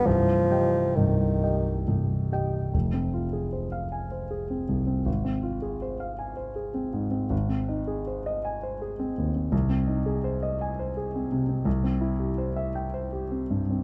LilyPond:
<<
  \new Staff \with { instrumentName = "Grand piano" } { \time 3/4 \key c \minor \tempo 4 = 80 <c,, c,>8 <g' ees'' g''>8 <c,, c,>8 <g' ees'' g''>8 <c,, c,>8 <g' ees'' g''>8 | \key f \minor f,,16 c'16 f'16 aes'16 c''16 f''16 aes''16 c''16 aes'16 c'16 c,16 c'16 | aes,,16 c'16 f'16 aes'16 c''16 f''16 aes''16 c''16 aes'16 c'16 aes,16 c'16 | aes,,16 c'16 ees'16 aes'16 c''16 ees''16 aes''16 c''16 aes'16 c'16 ees,16 c'16 |
c,16 c'16 ees'16 aes'16 c''16 ees''16 aes''16 c''16 aes'16 c'16 c16 c'16 | \key c \major c,16 c'16 e'16 g'16 c''16 e''16 g''16 c''16 g'16 c'16 g,16 c'16 | }
  \new Staff \with { instrumentName = "Bassoon" } { \clef bass \time 3/4 \key c \minor f4 ees4 r4 | \key f \minor r2. | r2. | r2. |
r2. | \key c \major r2. | }
>>